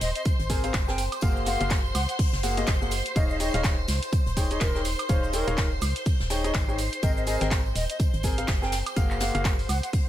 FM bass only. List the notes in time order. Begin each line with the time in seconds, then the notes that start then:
0.01 D#1
0.40 G#1
0.74 F#1
1.22 F#1
1.61 F#1
1.95 C#2
2.33 F#1
2.68 F#1
3.16 D#1
3.54 D#1
3.88 C#2
4.27 D#1
4.61 D#1
5.09 D#1
5.48 D#1
5.82 C#2
6.20 D#1
6.55 G#1
7.03 G#1
7.41 G#1
7.76 D#1
8.14 G#1
8.48 F#1
8.97 F#1
9.35 F#1
9.69 C#2